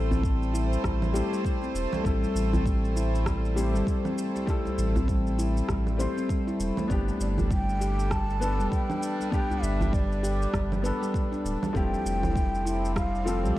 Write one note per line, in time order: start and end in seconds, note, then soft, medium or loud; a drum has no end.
0.00 0.77 A1 medium
0.00 1.12 G3 loud
0.00 1.13 A3 medium
0.00 6.90 A3 medium
0.00 1.14 C4 medium
0.00 1.15 E4 medium
0.00 8.86 E4 medium
0.00 1.12 A4 loud
0.00 13.59 A4 medium
0.00 1.16 C5 loud
0.00 6.90 C5 medium
0.11 0.23 C4 loud
0.11 djembe slap soft
0.11 djembe tone soft
0.11 low conga medium
0.11 djembe bass loud
0.11 shaker soft
0.23 0.52 G3 medium
0.23 kick loud
0.23 shaker soft
0.43 shaker soft
0.54 0.71 E4 loud
0.54 shaker medium
0.73 shaker soft
0.84 1.22 A1 loud
0.84 0.94 G3 medium
0.84 kick loud
0.84 cross-stick medium
0.84 shaker soft
1.02 low conga medium
1.02 shaker soft
1.12 2.01 G3 medium
1.12 2.02 A3 medium
1.12 2.02 C4 medium
1.12 2.03 E4 medium
1.12 1.30 G4 loud
1.12 djembe slap medium
1.12 shaker medium
1.16 2.03 C5 loud
1.32 1.44 G3 loud
1.32 shaker soft
1.45 kick loud
1.45 shaker soft
1.62 1.91 C4 medium
1.62 djembe slap soft
1.62 djembe tone soft
1.62 shaker soft
1.74 1.86 E1 medium
1.74 shaker medium
1.93 2.21 G3 medium
1.93 djembe slap medium
1.93 djembe tone medium
1.93 low conga medium
1.93 shaker soft
2.03 2.27 A1 medium
2.03 3.53 G3 loud
2.03 3.53 A3 medium
2.03 3.54 C4 medium
2.03 3.54 E4 medium
2.03 3.55 A4 loud
2.03 kick loud
2.03 shaker soft
2.23 2.52 G3 medium
2.23 djembe tone medium
2.23 shaker soft
2.35 3.76 A1 medium
2.35 shaker medium
2.53 2.65 C4 loud
2.53 djembe tone soft
2.53 low conga medium
2.53 djembe bass loud
2.53 shaker soft
2.66 2.95 G3 medium
2.66 kick loud
2.66 shaker soft
2.85 shaker soft
2.96 3.13 E4 medium
2.96 shaker medium
3.15 shaker soft
3.26 3.36 G3 medium
3.26 kick loud
3.26 cross-stick medium
3.26 djembe slap soft
3.26 shaker soft
3.45 shaker soft
3.55 4.44 G3 medium
3.55 4.44 A3 medium
3.55 4.45 C4 medium
3.55 4.45 E4 medium
3.55 3.73 G4 loud
3.55 4.46 C5 loud
3.55 shaker medium
3.75 3.83 G1 medium
3.75 3.86 G3 loud
3.75 shaker soft
3.87 kick loud
3.87 shaker soft
4.05 4.33 C4 medium
4.05 low conga medium
4.05 shaker soft
4.18 shaker medium
4.35 4.64 G3 medium
4.35 djembe slap soft
4.35 shaker soft
4.46 5.95 G3 loud
4.46 5.96 A3 medium
4.46 5.96 C4 medium
4.46 5.97 E4 medium
4.46 kick loud
4.46 shaker soft
4.50 5.97 A4 loud
4.65 4.94 G3 medium
4.65 djembe tone medium
4.65 djembe bass medium
4.65 shaker soft
4.78 5.62 A1 medium
4.78 shaker medium
4.96 5.08 C4 loud
4.96 djembe slap soft
4.96 djembe tone soft
4.96 low conga medium
4.96 djembe bass loud
4.96 shaker soft
5.08 5.37 G3 medium
5.08 kick loud
5.08 shaker soft
5.27 shaker soft
5.38 5.55 E4 loud
5.38 shaker medium
5.57 shaker soft
5.69 6.07 A1 medium
5.69 5.79 G3 medium
5.69 kick loud
5.69 cross-stick medium
5.69 shaker soft
5.87 low conga medium
5.87 shaker soft
5.97 6.86 G3 medium
5.97 6.86 A3 medium
5.97 6.87 C4 medium
5.97 6.87 E4 medium
5.97 6.09 C5 loud
5.97 djembe slap medium
5.97 shaker medium
6.01 6.88 C5 loud
6.17 6.28 C4 medium
6.17 shaker soft
6.29 6.40 G3 medium
6.29 kick loud
6.29 shaker soft
6.47 6.58 E4 loud
6.47 djembe slap soft
6.47 djembe tone soft
6.47 shaker soft
6.59 6.71 E1 medium
6.59 6.77 E4 medium
6.59 shaker medium
6.77 6.89 A3 medium
6.77 djembe slap soft
6.77 djembe tone medium
6.77 low conga medium
6.77 shaker soft
6.88 7.12 G1 loud
6.88 11.75 G3 medium
6.88 8.37 B3 loud
6.88 8.38 D4 medium
6.88 kick loud
6.88 shaker soft
6.92 8.39 G4 loud
7.08 7.36 G3 medium
7.08 djembe tone medium
7.08 shaker soft
7.20 8.61 G1 medium
7.20 7.28 D5 medium
7.20 shaker medium
7.37 12.69 D4 medium
7.37 7.45 G4 medium
7.37 djembe tone soft
7.37 djembe bass loud
7.37 low conga medium
7.37 shaker soft
7.50 7.80 G3 medium
7.50 8.13 G5 loud
7.50 kick loud
7.50 shaker soft
7.69 shaker soft
7.81 7.98 G4 loud
7.81 shaker medium
7.99 shaker soft
8.07 8.21 G3 medium
8.07 11.75 B4 medium
8.07 kick loud
8.07 cross-stick medium
8.07 djembe slap soft
8.11 8.71 A5 loud
8.11 shaker soft
8.30 shaker soft
8.40 9.28 B3 medium
8.40 9.29 D4 medium
8.40 9.30 A4 loud
8.40 8.58 B4 loud
8.40 shaker medium
8.59 8.67 E1 loud
8.59 8.71 G3 loud
8.59 shaker soft
8.72 9.28 G5 loud
8.72 kick loud
8.72 shaker soft
8.90 9.18 D4 medium
8.90 low conga medium
8.90 shaker soft
9.03 shaker medium
9.20 9.48 G3 medium
9.20 djembe slap soft
9.20 shaker soft
9.30 10.80 B3 medium
9.30 10.81 D4 medium
9.30 10.82 G4 loud
9.30 9.64 G5 loud
9.30 kick loud
9.30 shaker soft
9.50 9.79 G3 medium
9.50 djembe tone medium
9.50 djembe bass medium
9.50 shaker soft
9.62 10.47 G1 medium
9.62 9.95 E5 medium
9.62 shaker medium
9.81 9.88 G4 medium
9.81 djembe slap soft
9.81 djembe tone soft
9.81 low conga medium
9.81 djembe bass loud
9.81 shaker soft
9.93 10.22 G3 medium
9.93 10.84 D5 medium
9.93 kick loud
9.93 shaker soft
10.12 shaker soft
10.23 10.40 G4 loud
10.23 shaker medium
10.42 shaker soft
10.53 10.92 G1 loud
10.53 10.64 G3 medium
10.53 kick loud
10.53 cross-stick medium
10.53 shaker soft
10.72 low conga medium
10.72 shaker soft
10.82 11.71 B3 medium
10.82 11.72 D4 medium
10.82 11.73 A4 loud
10.82 11.00 B4 loud
10.82 djembe slap medium
10.82 shaker medium
11.02 11.13 G3 loud
11.02 shaker soft
11.14 kick loud
11.14 shaker soft
11.32 11.60 D4 medium
11.32 djembe slap soft
11.32 djembe tone soft
11.32 shaker soft
11.44 11.56 D1 medium
11.44 shaker medium
11.62 11.75 G3 medium
11.62 djembe slap soft
11.62 djembe tone medium
11.62 low conga medium
11.62 shaker soft
11.73 11.97 F1 loud
11.73 13.22 F3 loud
11.73 13.59 F3 medium
11.73 13.23 A3 medium
11.73 13.23 C4 loud
11.73 13.24 E4 medium
11.73 13.24 G4 loud
11.73 12.92 G5 loud
11.73 kick loud
11.73 shaker soft
11.93 12.21 G3 medium
11.93 djembe tone medium
11.93 shaker soft
12.05 13.46 F1 medium
12.05 shaker medium
12.15 13.59 C4 medium
12.23 12.30 E4 medium
12.23 djembe tone soft
12.23 low conga medium
12.23 djembe bass medium
12.23 shaker soft
12.35 12.64 G3 medium
12.35 kick loud
12.35 shaker soft
12.43 13.59 G4 medium
12.55 shaker soft
12.65 12.83 E4 loud
12.65 shaker medium
12.85 shaker soft
12.96 13.06 G3 medium
12.96 13.58 F5 loud
12.96 kick loud
12.96 cross-stick medium
12.96 djembe slap medium
12.96 shaker soft
13.15 shaker soft
13.24 13.59 F3 medium
13.24 13.59 A3 medium
13.24 13.59 C4 medium
13.24 13.42 F4 loud
13.24 13.59 A4 loud
13.24 13.59 G5 medium
13.24 shaker medium
13.44 13.52 C2 loud
13.44 13.56 G3 loud
13.44 shaker soft